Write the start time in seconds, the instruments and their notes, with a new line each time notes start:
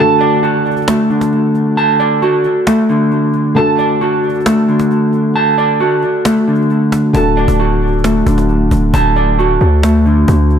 Already playing: felt piano D3 A3
0.00 felt piano F#4 A4, clean electric guitar A5
0.21 clean electric guitar D5, cajon slap
0.43 clean electric guitar F#4, cajon slap
0.65 cajon slap
0.71 cajon slap
0.77 cajon slap
0.82 cajon slap
0.88 clean electric guitar A3, cajon slap
1.10 clean electric guitar D3, cajon slap
1.21 cajon slap
1.33 cajon slap
1.55 cajon slap
1.77 clean electric guitar A5, cajon slap
2.00 clean electric guitar D5, cajon slap
2.22 clean electric guitar F#4, cajon slap
2.44 cajon slap
2.67 clean electric guitar A3, cajon slap
2.89 clean electric guitar D3, cajon slap
3.12 cajon slap
3.34 cajon slap
3.55 felt piano D3 A3 F#4 A4, clean electric guitar A5, cajon slap
3.79 clean electric guitar D5, cajon slap
4.01 clean electric guitar F#4, cajon slap
4.24 cajon slap
4.29 cajon slap
4.35 cajon slap
4.40 cajon slap
4.46 clean electric guitar A3, cajon slap
4.68 clean electric guitar D3, cajon slap
4.80 cajon slap
4.91 cajon slap
5.13 cajon slap
5.36 clean electric guitar A5, cajon slap
5.58 clean electric guitar D5, cajon slap
5.80 clean electric guitar F#4, cajon slap
6.03 cajon slap
6.25 clean electric guitar A3, cajon slap
6.47 clean electric guitar D3, cajon slap
6.55 cajon slap
6.62 cajon slap
6.70 cajon slap
6.92 cajon slap
7.13 808-style bass D1, felt piano D3 A3 F#4 A4, clean electric guitar A5, cajon bass
7.37 clean electric guitar D5, cajon slap
7.48 808-style bass D1, cajon bass
7.59 clean electric guitar F#4, cajon slap
7.82 cajon slap
7.87 cajon slap
7.93 cajon slap
7.99 cajon slap
8.04 clean electric guitar A3, cajon slap
8.27 808-style bass D1, clean electric guitar D3, cajon bass
8.38 cajon slap
8.49 cajon slap
8.71 808-style bass D1, cajon bass
8.94 808-style bass D1, clean electric guitar A5, cajon bass
9.16 clean electric guitar D5, cajon slap
9.39 clean electric guitar F#4, cajon slap
9.61 808-style bass D2, cajon slap
9.83 clean electric guitar A3, cajon slap
10.06 clean electric guitar D3, cajon slap
10.28 808-style bass D2, cajon bass
10.50 cajon slap